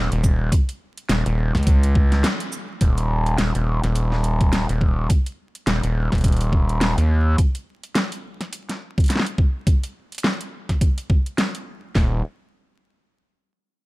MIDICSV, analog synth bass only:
0, 0, Header, 1, 2, 480
1, 0, Start_track
1, 0, Tempo, 571429
1, 441, Time_signature, 4, 2, 24, 8
1, 11639, End_track
2, 0, Start_track
2, 0, Title_t, "Analog synth bass"
2, 0, Program_c, 0, 38
2, 100, Note_on_c, 0, 27, 100
2, 425, Note_off_c, 0, 27, 0
2, 920, Note_on_c, 0, 27, 97
2, 1038, Note_off_c, 0, 27, 0
2, 1061, Note_on_c, 0, 27, 98
2, 1278, Note_off_c, 0, 27, 0
2, 1300, Note_on_c, 0, 37, 100
2, 1881, Note_off_c, 0, 37, 0
2, 2362, Note_on_c, 0, 27, 94
2, 2826, Note_off_c, 0, 27, 0
2, 2842, Note_on_c, 0, 27, 93
2, 2959, Note_off_c, 0, 27, 0
2, 2983, Note_on_c, 0, 27, 94
2, 3199, Note_off_c, 0, 27, 0
2, 3221, Note_on_c, 0, 27, 97
2, 3919, Note_off_c, 0, 27, 0
2, 3942, Note_on_c, 0, 27, 98
2, 4266, Note_off_c, 0, 27, 0
2, 4763, Note_on_c, 0, 27, 99
2, 4879, Note_off_c, 0, 27, 0
2, 4902, Note_on_c, 0, 27, 100
2, 5119, Note_off_c, 0, 27, 0
2, 5143, Note_on_c, 0, 27, 94
2, 5839, Note_off_c, 0, 27, 0
2, 5861, Note_on_c, 0, 39, 100
2, 6185, Note_off_c, 0, 39, 0
2, 10041, Note_on_c, 0, 27, 96
2, 10264, Note_off_c, 0, 27, 0
2, 11639, End_track
0, 0, End_of_file